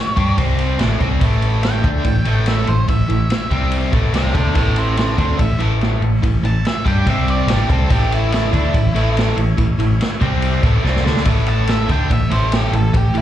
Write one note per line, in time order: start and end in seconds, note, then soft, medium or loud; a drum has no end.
0.00 0.35 A3 medium
0.00 0.35 C#4 medium
0.00 0.35 E4 medium
0.00 0.35 C#5 medium
0.16 0.36 G2 medium
0.16 0.36 G3 medium
0.16 0.37 D4 medium
0.16 0.37 G4 medium
0.16 kick medium
0.16 ride medium
0.37 0.76 C2 medium
0.37 0.78 C3 medium
0.37 0.79 G3 medium
0.37 0.79 C4 medium
0.37 0.79 C4 loud
0.37 0.78 G4 medium
0.37 0.78 C5 medium
0.37 kick medium
0.37 ride medium
0.58 ride medium
0.78 0.99 A1 medium
0.78 0.99 A2 medium
0.78 0.99 E3 loud
0.78 1.00 A3 medium
0.78 0.93 A#3 medium
0.78 0.93 D4 medium
0.78 0.93 F4 medium
0.78 0.93 D5 medium
0.78 snare loud
0.78 ride loud
0.93 3.49 A3 medium
0.93 3.48 C#4 medium
0.93 3.48 E4 medium
0.93 3.48 C#5 medium
0.99 1.20 C2 loud
0.99 1.20 C3 medium
0.99 1.20 G3 medium
0.99 1.21 C4 medium
0.99 kick loud
0.99 ride medium
1.20 1.80 A1 medium
1.20 1.83 A2 medium
1.20 1.83 E3 medium
1.20 1.83 A3 medium
1.20 kick loud
1.20 ride loud
1.42 ride medium
1.63 2.44 G5 loud
1.63 snare loud
1.63 ride medium
1.83 2.03 D2 loud
1.83 2.04 D3 medium
1.83 2.04 A3 medium
1.83 2.04 D4 medium
1.83 kick loud
1.83 ride medium
2.04 2.24 A1 medium
2.04 2.21 A2 medium
2.04 2.21 E3 medium
2.04 kick medium
2.04 ride medium
2.25 2.65 A1 medium
2.25 2.65 A2 medium
2.25 2.65 E3 medium
2.25 2.67 A3 loud
2.25 ride medium
2.46 2.68 E5 medium
2.46 snare loud
2.46 ride medium
2.66 2.87 A1 medium
2.66 2.84 A2 medium
2.66 2.84 E3 medium
2.66 2.88 C5 medium
2.66 ride medium
2.88 3.08 A1 medium
2.88 3.05 A2 medium
2.88 3.05 E3 medium
2.88 3.70 E5 loud
2.88 kick medium
2.88 ride medium
3.08 3.29 A1 medium
3.08 3.25 A2 medium
3.08 3.25 E3 medium
3.08 ride medium
3.30 snare loud
3.30 ride medium
3.49 3.90 C2 medium
3.49 3.92 C3 medium
3.49 3.92 G3 medium
3.49 3.91 C4 medium
3.49 3.92 C4 medium
3.49 3.91 G4 medium
3.49 3.92 C5 medium
3.49 kick medium
3.49 ride medium
3.72 ride loud
3.91 4.12 A1 loud
3.91 4.13 A2 medium
3.91 4.13 E3 medium
3.91 7.03 A3 medium
3.91 4.13 A3 medium
3.91 7.03 C#4 medium
3.91 7.02 E4 medium
3.91 7.03 C#5 medium
3.91 kick loud
3.91 ride medium
4.13 4.33 C2 medium
4.13 4.33 C3 medium
4.13 4.34 G3 medium
4.13 4.34 C4 medium
4.13 4.35 E5 medium
4.13 snare loud
4.13 ride medium
4.18 4.36 G5 medium
4.33 4.54 D2 medium
4.33 4.54 D3 medium
4.33 4.54 A3 medium
4.33 4.55 D4 medium
4.33 4.55 E5 medium
4.33 4.55 G5 medium
4.33 kick loud
4.33 ride medium
4.54 5.14 A1 medium
4.54 5.17 A2 medium
4.54 5.17 E3 loud
4.54 5.17 A3 loud
4.54 4.75 E5 medium
4.54 4.76 G5 medium
4.54 kick loud
4.54 ride medium
4.76 4.96 G4 medium
4.76 4.97 E5 medium
4.76 ride medium
4.97 5.17 G4 medium
4.97 5.17 E5 medium
4.97 snare loud
4.97 ride medium
5.17 5.38 D2 medium
5.17 5.38 D3 medium
5.17 5.38 A3 medium
5.17 5.38 D4 medium
5.17 5.38 G4 medium
5.17 5.39 E5 medium
5.17 kick loud
5.17 ride medium
5.39 5.58 A1 medium
5.39 5.56 A2 medium
5.39 5.56 E3 medium
5.39 5.60 E5 medium
5.39 kick medium
5.39 ride medium
5.59 5.98 A1 medium
5.59 6.00 A2 medium
5.59 6.01 E3 loud
5.59 6.01 A3 loud
5.59 ride medium
5.81 snare loud
5.81 ride medium
6.01 6.21 A1 medium
6.01 6.18 A2 medium
6.01 6.19 E3 medium
6.01 ride medium
6.22 6.42 A1 medium
6.22 6.39 A2 medium
6.22 6.40 E3 medium
6.22 kick medium
6.22 ride medium
6.43 6.63 A1 medium
6.43 6.60 A2 medium
6.43 6.60 E3 medium
6.43 6.65 A5 medium
6.43 ride medium
6.65 6.86 E5 medium
6.65 snare loud
6.65 ride medium
6.85 7.05 G2 medium
6.85 7.05 G3 medium
6.85 7.06 D4 medium
6.85 7.06 G4 medium
6.85 7.07 G5 medium
6.85 kick medium
6.85 ride medium
7.04 7.45 C2 medium
7.04 7.47 C3 medium
7.04 7.48 G3 loud
7.04 7.47 C4 medium
7.04 7.48 C4 loud
7.04 7.47 G4 medium
7.04 7.47 C5 medium
7.04 kick loud
7.04 ride medium
7.10 7.29 E5 medium
7.28 7.49 D5 medium
7.28 ride medium
7.47 7.67 A1 medium
7.47 7.68 A2 medium
7.47 7.69 E3 medium
7.47 7.69 A3 loud
7.47 7.62 A#3 medium
7.47 7.62 D4 medium
7.47 7.61 F4 medium
7.47 7.70 G4 medium
7.47 7.62 D5 medium
7.47 snare loud
7.47 ride loud
7.61 10.18 A3 medium
7.61 10.18 C#4 medium
7.61 10.18 E4 medium
7.61 10.18 C#5 medium
7.68 7.89 C2 medium
7.68 7.89 C3 medium
7.68 7.89 G3 loud
7.68 7.90 C4 loud
7.68 7.91 A4 medium
7.68 kick loud
7.68 ride medium
7.89 8.49 A1 loud
7.89 8.51 A2 medium
7.89 8.52 E3 medium
7.89 8.51 A3 loud
7.89 8.11 G4 medium
7.89 kick loud
7.89 ride loud
8.12 8.33 E4 medium
8.12 ride medium
8.32 9.14 E4 loud
8.32 snare loud
8.32 ride medium
8.52 8.73 D2 medium
8.52 8.73 D3 medium
8.52 8.73 A3 medium
8.52 8.73 D4 medium
8.52 kick medium
8.52 ride medium
8.73 8.93 A1 medium
8.73 8.91 A2 medium
8.73 8.91 E3 medium
8.73 kick medium
8.73 ride medium
8.94 9.34 A1 medium
8.94 9.35 A2 medium
8.94 9.35 E3 loud
8.94 9.37 A3 loud
8.94 ride medium
9.17 snare loud
9.17 ride medium
9.36 9.57 A1 medium
9.36 9.54 A2 medium
9.36 9.54 E3 medium
9.36 ride medium
9.58 9.78 A1 medium
9.58 9.75 A2 medium
9.58 9.75 E3 medium
9.58 kick medium
9.58 ride medium
9.78 9.98 A1 medium
9.78 9.96 A2 medium
9.78 9.96 E3 medium
9.78 ride medium
10.01 snare loud
10.01 ride medium
10.20 10.60 C2 medium
10.20 10.62 C3 medium
10.20 10.63 G3 medium
10.20 10.62 C4 medium
10.20 10.63 C4 medium
10.20 10.62 G4 medium
10.20 10.62 C5 medium
10.20 kick loud
10.20 ride medium
10.42 ride medium
10.61 10.83 A1 medium
10.61 10.83 A2 medium
10.61 10.84 E3 medium
10.61 13.22 A3 medium
10.61 10.84 A3 loud
10.61 13.22 C#4 medium
10.61 13.22 E4 medium
10.61 13.22 C#5 medium
10.61 kick loud
10.61 ride medium
10.83 11.04 C2 loud
10.83 11.03 C3 medium
10.83 11.04 G3 loud
10.83 11.04 C4 medium
10.83 snare medium
10.96 snare medium
11.04 11.24 D2 medium
11.04 11.24 D3 medium
11.04 11.25 A3 medium
11.04 11.25 D4 loud
11.04 snare medium
11.17 snare medium
11.24 11.85 A1 loud
11.24 11.88 A2 medium
11.24 11.88 E3 medium
11.24 11.88 A3 medium
11.24 kick loud
11.24 ride loud
11.46 11.68 A5 medium
11.46 ride medium
11.67 11.90 E5 medium
11.67 snare loud
11.67 ride loud
11.88 12.09 D2 loud
11.88 12.09 D3 medium
11.88 12.09 A3 medium
11.88 12.10 D4 medium
11.88 12.11 G5 medium
11.88 kick loud
11.88 ride medium
12.10 12.29 A1 medium
12.10 12.27 A2 medium
12.10 12.27 E3 medium
12.10 12.32 E5 medium
12.10 kick medium
12.10 ride medium
12.30 12.70 A1 medium
12.30 12.71 A2 medium
12.30 12.71 E3 medium
12.30 12.73 A3 loud
12.30 12.52 C5 medium
12.30 ride medium
12.52 12.73 G4 medium
12.52 snare loud
12.52 ride loud
12.71 12.92 A1 medium
12.71 12.90 A2 medium
12.71 12.90 E3 medium
12.71 12.95 A4 medium
12.71 ride medium
12.93 13.13 A1 medium
12.93 13.11 A2 medium
12.93 13.11 E3 medium
12.93 13.16 G4 medium
12.93 kick medium
12.93 ride medium
13.14 13.22 A1 medium
13.14 13.22 A2 medium
13.14 13.22 E3 medium
13.14 13.22 E4 medium
13.14 ride medium